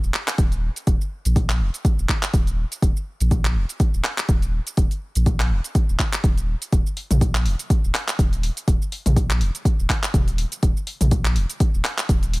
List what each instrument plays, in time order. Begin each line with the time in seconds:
0.03 sub bass D#1, shaker
0.14 clap
0.28 clap, closed hi-hat, shaker
0.38 sub bass D#1, kick, closed hi-hat, shaker
0.52 closed hi-hat, shaker
0.76 closed hi-hat, shaker
0.87 sub bass D#1, kick, closed hi-hat, shaker
1.01 shaker
1.25 sub bass A#1, closed hi-hat, shaker
1.36 kick, closed hi-hat, shaker
1.50 clap, shaker
1.60 sub bass D#1
1.74 closed hi-hat, shaker
1.85 kick, closed hi-hat, shaker
1.98 sub bass D#1, shaker
2.09 kick, clap
2.23 clap, closed hi-hat, shaker
2.34 sub bass D#1, kick, closed hi-hat, shaker
2.47 closed hi-hat, shaker
2.72 closed hi-hat, shaker
2.82 sub bass D#1, kick, closed hi-hat, shaker
2.97 shaker
3.20 sub bass A#1, closed hi-hat, shaker
3.31 kick, closed hi-hat, shaker
3.45 clap, shaker
3.55 sub bass D#1
3.69 closed hi-hat, shaker
3.80 kick, closed hi-hat, shaker
3.94 sub bass D#1, shaker
4.04 clap
4.18 clap, closed hi-hat, shaker
4.29 sub bass D#1, kick, closed hi-hat, shaker
4.42 closed hi-hat, shaker
4.67 closed hi-hat, shaker
4.77 sub bass D#1, kick, closed hi-hat, shaker
4.91 closed hi-hat, shaker
5.15 sub bass A#1, closed hi-hat, shaker
5.26 kick, closed hi-hat, shaker
5.40 clap, shaker
5.51 sub bass D#1
5.64 closed hi-hat, shaker
5.75 kick, closed hi-hat, shaker
5.89 sub bass D#1, shaker
5.99 kick, clap
6.13 clap, closed hi-hat, shaker
6.24 sub bass D#1, kick, closed hi-hat, shaker
6.37 closed hi-hat, shaker
6.62 closed hi-hat, shaker
6.72 sub bass D#1, kick, closed hi-hat, shaker
6.87 shaker
6.97 open hi-hat
7.11 sub bass A#1, closed hi-hat, mid tom, shaker
7.21 kick, closed hi-hat, shaker
7.35 clap, shaker
7.46 sub bass D#1, open hi-hat
7.59 closed hi-hat, shaker
7.70 kick, closed hi-hat, shaker
7.84 sub bass D#1, shaker
7.95 clap, open hi-hat
8.08 clap, closed hi-hat, shaker
8.19 sub bass D#1, kick, closed hi-hat, shaker
8.33 closed hi-hat, shaker
8.43 open hi-hat
8.57 closed hi-hat, shaker
8.68 sub bass D#1, kick, closed hi-hat, shaker
8.82 shaker
8.92 open hi-hat
9.06 sub bass A#1, closed hi-hat, mid tom, shaker
9.16 kick, closed hi-hat, shaker
9.30 clap, shaker
9.41 sub bass D#1, open hi-hat
9.55 closed hi-hat, shaker
9.65 kick, closed hi-hat, shaker
9.79 sub bass D#1, shaker
9.90 kick, clap, open hi-hat
10.03 clap, closed hi-hat, shaker
10.14 sub bass D#1, kick, closed hi-hat, mid tom, shaker
10.28 closed hi-hat, shaker
10.38 open hi-hat
10.52 closed hi-hat, shaker
10.63 sub bass D#1, kick, closed hi-hat, shaker
10.77 shaker
10.87 open hi-hat
11.01 sub bass A#1, closed hi-hat, mid tom, shaker
11.11 kick, closed hi-hat, shaker
11.25 clap, shaker
11.36 sub bass D#1, open hi-hat
11.50 closed hi-hat, shaker
11.60 kick, closed hi-hat, shaker
11.74 sub bass D#1, shaker
11.85 clap, open hi-hat
11.98 clap, closed hi-hat, shaker
12.09 sub bass D#1, kick, closed hi-hat, shaker
12.23 closed hi-hat, shaker
12.34 open hi-hat